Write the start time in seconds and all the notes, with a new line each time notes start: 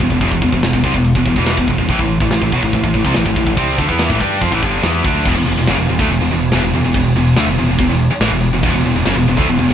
0.00 E1 E2 B2, open hi-hat
0.10 E1 E2 B2, kick
0.21 E1 E2 B2, kick, open hi-hat
0.31 E1 E2 B2, kick
0.42 E1 E2 B2, kick, open hi-hat
0.52 E1 E2 B2, kick
0.63 E1 E2 B2, snare, open hi-hat
0.73 E1 E2 B2, kick
0.83 C2 C3 G3, kick, open hi-hat
0.94 E1 E2 B2, kick
1.05 open hi-hat
1.15 E1 E2 B2, kick
1.25 E1 E2 B2, kick, open hi-hat
1.36 E1 E2 B2 E3, kick
1.46 snare, open hi-hat
1.57 E1 E2 B2, kick
1.67 E1 E2 B2, kick, open hi-hat
1.78 E1 E2 B2, kick
1.88 A1 A2 E3, kick, open hi-hat
1.99 A1 A2 E3, kick
2.09 open hi-hat
2.20 A1 A2 E3, kick
2.30 A1 A2 E3, snare, open hi-hat
2.42 A1 A2 E3, kick
2.52 B1 B2 F#3, kick, open hi-hat
2.63 A1 A2 E3, kick
2.73 A1 A2 E3, kick, open hi-hat
2.84 A1 A2 E3, kick
2.94 A1 A2 E3, kick, open hi-hat
3.04 C2 C3 G3, kick
3.14 A1 A2 E3, snare, open hi-hat
3.26 A1 A2 E3, kick
3.36 A1 A2 E3, kick, open hi-hat
3.46 A1 A2 E3, kick
3.57 C2 C3 G3 C4, kick, open hi-hat
3.77 D2 D3 A3, kick, open hi-hat
3.88 E2 E3 B3 E4, kick
3.99 snare, open hi-hat
4.10 A1 A2 E3, kick
4.20 G2 G3 D4 G4, kick, open hi-hat
4.42 F2 F3 C4, kick, open hi-hat
4.51 A1 A2 E3, kick
4.63 G1 G2 D3 G3, kick, open hi-hat
4.82 E2 E3 B3 E4, snare, open hi-hat
5.04 D2 D3 A3 D4, kick, open hi-hat
5.25 E1 E2 B2, kick, crash
5.36 E1 E2 B2
5.46 E1 E2 B2, crash
5.57 E1 E2 B2
5.67 F#1 F#2 C#3, snare, crash
5.78 E1 E2 B2
5.89 E1 E2 B2, crash
5.99 D2 D3 A3, kick
6.09 E1 E2 B2, crash
6.21 E1 E2 B2
6.31 E1 E2 B2, crash
6.52 E1 E2 B2, snare, crash
6.63 E1 E2 B2
6.73 E1 E2 B2, crash
6.84 E1 E2 B2
6.94 E1 E2 B2, kick, crash
7.15 E1 E2 B2, crash
7.36 D2 D3 A3, snare, crash
7.47 E1 E2 B2
7.58 E1 E2 B2, crash
7.69 E1 E2 B2
7.78 E1 E2 B2, kick, crash
7.89 E1 E2 B2
8.00 crash
8.11 muted picked electric bass stroke, muted distorted electric guitar stroke
8.20 A1 A2 E3, snare, crash
8.31 E1 E2 B2
8.42 crash
8.52 E1 E2 B2
8.63 E1 E2 B2, kick, crash
8.74 E1 E2 B2
8.84 E1 E2 B2, crash
8.95 E1 E2 B2
9.05 F#1 F#2 C#3, snare, crash
9.16 E1 E2 B2
9.26 E1 E2 B2, crash
9.37 D2 D3 A3, kick
9.48 E1 E2 B2, crash
9.59 E1 E2 B2
9.69 E1 E2 B2, crash